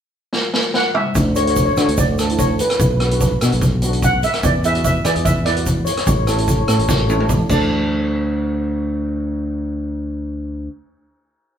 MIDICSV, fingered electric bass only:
0, 0, Header, 1, 2, 480
1, 0, Start_track
1, 0, Key_signature, 2, "major"
1, 0, Tempo, 409277
1, 1355, Time_signature, 4, 2, 24, 8
1, 13582, End_track
2, 0, Start_track
2, 0, Title_t, "Fingered electric bass"
2, 0, Program_c, 0, 33
2, 1353, Note_on_c, 0, 38, 78
2, 1990, Note_off_c, 0, 38, 0
2, 2081, Note_on_c, 0, 50, 77
2, 2192, Note_off_c, 0, 50, 0
2, 2205, Note_on_c, 0, 38, 71
2, 3053, Note_off_c, 0, 38, 0
2, 3280, Note_on_c, 0, 35, 89
2, 3916, Note_off_c, 0, 35, 0
2, 4014, Note_on_c, 0, 47, 78
2, 4121, Note_off_c, 0, 47, 0
2, 4145, Note_on_c, 0, 35, 77
2, 4984, Note_off_c, 0, 35, 0
2, 5202, Note_on_c, 0, 40, 87
2, 5836, Note_off_c, 0, 40, 0
2, 5924, Note_on_c, 0, 52, 77
2, 6035, Note_off_c, 0, 52, 0
2, 6053, Note_on_c, 0, 40, 73
2, 6895, Note_off_c, 0, 40, 0
2, 7122, Note_on_c, 0, 33, 86
2, 7753, Note_off_c, 0, 33, 0
2, 7835, Note_on_c, 0, 45, 79
2, 7948, Note_off_c, 0, 45, 0
2, 7964, Note_on_c, 0, 33, 78
2, 8695, Note_off_c, 0, 33, 0
2, 8791, Note_on_c, 0, 38, 82
2, 12520, Note_off_c, 0, 38, 0
2, 13582, End_track
0, 0, End_of_file